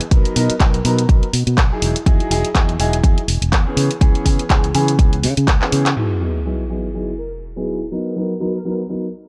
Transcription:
0.01 closed hi-hat
0.11 fingered electric bass B1, grand piano F#3 B3 D#4 A#4, kick, closed hi-hat
0.25 muted fingered electric bass stroke, closed hi-hat
0.36 fingered electric bass B2, grand piano F#3 B3 D#4 A#4, open hi-hat
0.50 muted fingered electric bass stroke, closed hi-hat
0.60 fingered electric bass B1, grand piano F#3 B3 D#4 A#4, kick, clap, closed hi-hat
0.74 closed hi-hat
0.85 fingered electric bass B2, grand piano F#3 B3 D#4 A#4, open hi-hat
0.98 closed hi-hat
1.09 fingered electric bass B1, grand piano F#3 B3 D#4 A#4, kick, closed hi-hat
1.22 muted fingered electric bass stroke, closed hi-hat
1.33 fingered electric bass B2, open hi-hat
1.47 fingered electric bass B2, closed hi-hat
1.58 fingered electric bass B1, kick, clap, closed hi-hat
1.71 grand piano F#3 D#4 E4 G#4
1.82 fingered electric bass E1, open hi-hat
1.96 closed hi-hat
2.06 fingered electric bass E2, grand piano F#3 D#4 E4 G#4, kick, closed hi-hat
2.20 closed hi-hat
2.30 fingered electric bass E1, grand piano F#3 D#4 E4 G#4, open hi-hat
2.45 closed hi-hat
2.55 fingered electric bass E2, grand piano F#3 D#4 E4 G#4, kick, clap, closed hi-hat
2.69 closed hi-hat
2.79 fingered electric bass E1, grand piano F#3 D#4 E4 G#4, open hi-hat
2.93 closed hi-hat
3.03 fingered electric bass E2, grand piano F#3 D#4 E4 G#4, kick, closed hi-hat
3.18 closed hi-hat
3.28 fingered electric bass E1, open hi-hat
3.41 fingered electric bass E1, closed hi-hat
3.52 fingered electric bass E2, kick, clap, closed hi-hat
3.66 grand piano E3 B3 C#4 G#4
3.77 fingered electric bass C#3, open hi-hat
3.91 closed hi-hat
4.01 fingered electric bass C#2, grand piano E3 B3 C#4 G#4, kick, closed hi-hat
4.15 muted fingered electric bass stroke, closed hi-hat
4.25 fingered electric bass C#3, grand piano E3 B3 C#4 G#4, kick, open hi-hat
4.39 muted fingered electric bass stroke, closed hi-hat
4.49 fingered electric bass C#2, grand piano E3 B3 C#4 G#4, kick, clap, closed hi-hat
4.64 closed hi-hat
4.74 fingered electric bass C#3, grand piano E3 B3 C#4 G#4, open hi-hat
4.88 closed hi-hat
4.99 fingered electric bass C#2, grand piano B3 C#4 G#4, kick, closed hi-hat
5.13 closed hi-hat
5.23 fingered electric bass C#3, open hi-hat
5.37 fingered electric bass C#3, closed hi-hat
5.48 fingered electric bass C#2, kick, clap, closed hi-hat
5.61 grand piano E3 B3 C#4 G#4, clap
5.72 fingered electric bass C#3, open hi-hat
5.86 clap, closed hi-hat
5.96 grand piano F#3 B3 D#4 E4 G#4, crash, sub drop
6.21 grand piano F#3 B3 D#4 E4 G#4
6.45 grand piano F#3 B3 D#4 E4 G#4
6.69 grand piano F#3 B3 D#4 E4 G#4
6.94 grand piano F#3 B3 D#4 E4 G#4
7.18 analog polysynth A#4
7.56 grand piano F#3 B3 D#4 E4 G#4
7.91 grand piano F#3 B3 D#4 A#4
8.16 grand piano F#3 B3 D#4 A#4
8.40 grand piano F#3 B3 D#4 A#4
8.54 analog polysynth A#4
8.64 grand piano F#3 B3 D#4 A#4, analog polysynth A#4
8.89 grand piano F#3 B3 D#4 A#4

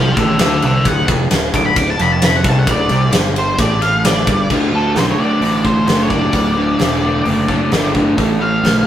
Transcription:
Already playing: fingered electric bass C2, overdriven electric guitar C3, lead electric guitar F5 A5
0.17 fingered electric bass A1, overdriven electric guitar A2, lead electric guitar D5 F#5, kick, ride
0.39 fingered electric bass D2, overdriven electric guitar D3, lead electric guitar D5 F#5, snare, ride
0.62 fingered electric bass C2, overdriven electric guitar C3, lead electric guitar D5 F#5, ride
0.84 fingered electric bass D1, overdriven electric guitar D2, lead electric guitar F#5, kick, ride
1.08 fingered electric bass F1, overdriven electric guitar F2, kick, ride
1.30 fingered electric bass D1, overdriven electric guitar D2, snare, ride
1.53 fingered electric bass D1, overdriven electric guitar D2, lead electric guitar D6, kick, ride
1.66 lead electric guitar B5
1.76 fingered electric bass D1, overdriven electric guitar D2, lead electric guitar D6, kick, ride
1.90 lead electric guitar A5
1.99 fingered electric bass F1, overdriven electric guitar F2, lead electric guitar B5, ride
2.12 lead electric guitar A5
2.22 lead electric guitar B5, snare, ride
2.36 lead electric guitar F#5
2.44 fingered electric bass C2, overdriven electric guitar C3, kick, ride
2.48 lead electric guitar A5
2.59 lead electric guitar F#5
2.67 fingered electric bass D1, overdriven electric guitar D2, kick, ride
2.71 lead electric guitar D5
2.89 fingered electric bass C2, overdriven electric guitar C3, ride
3.13 fingered electric bass G1, overdriven electric guitar G2, snare, ride
3.36 lead electric guitar C5, ride
3.59 fingered electric bass A1, overdriven electric guitar A2, lead electric guitar D5, kick, ride
3.82 lead electric guitar F5, ride
4.05 lead electric guitar D5, snare, ride
4.26 fingered electric bass G1, overdriven electric guitar G2, kick, ride
4.50 overdriven electric guitar D2 A2 D3, fingered electric bass D2, kick, crash
4.72 overdriven electric guitar D2 A2 D3, lead electric guitar A4
4.95 fingered electric bass B1, overdriven electric guitar D2 A2 D3, lead electric guitar C5, snare, open hi-hat
5.12 lead electric guitar C#5
5.18 overdriven electric guitar D2 A2 D3, lead electric guitar D5, muted fingered electric bass stroke
5.41 fingered electric bass A1, overdriven electric guitar D2 A2 D3, open hi-hat
5.64 overdriven electric guitar D2 A2 D3, lead electric guitar C5, kick
5.87 fingered electric bass F#1, overdriven electric guitar D2 A2 D3, snare, open hi-hat
6.03 lead electric guitar C#5
6.09 overdriven electric guitar D2 A2 D3, lead electric guitar D5, kick
6.33 fingered electric bass D1, overdriven electric guitar D2 A2 D3, kick, open hi-hat
6.56 overdriven electric guitar D2 A2 D3
6.79 fingered electric bass E1, overdriven electric guitar D2 A2 D3, snare, open hi-hat
7.02 overdriven electric guitar D2 A2 D3
7.25 fingered electric bass F#1, overdriven electric guitar D2 A2 D3, open hi-hat
7.48 overdriven electric guitar D2 A2 D3, kick
7.72 fingered electric bass G1, overdriven electric guitar D2 A2 D3, snare, open hi-hat
7.95 overdriven electric guitar D2 A2 D3, kick
8.17 fingered electric bass A1, overdriven electric guitar A2 E3 A3, kick, open hi-hat
8.39 overdriven electric guitar A2 E3 A3, lead electric guitar F5
8.63 fingered electric bass B1, overdriven electric guitar A2 E3 A3, snare, open hi-hat

